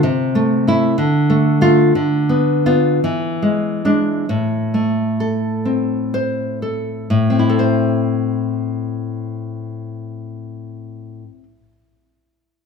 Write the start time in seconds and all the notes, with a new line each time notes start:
0.03 C3
0.35 A3
0.67 A3 E4
0.98 D3
1.30 A3
1.61 A3 F4
1.95 D3
2.29 B3
2.66 B3 F4
3.04 E3
3.42 G#3
3.85 G#3 D4
4.29 A2
4.74 A3
5.20 A4
5.65 C4
6.14 C5
6.62 A4
7.10 A2
7.30 C4
7.39 E4
7.50 A4
7.59 C5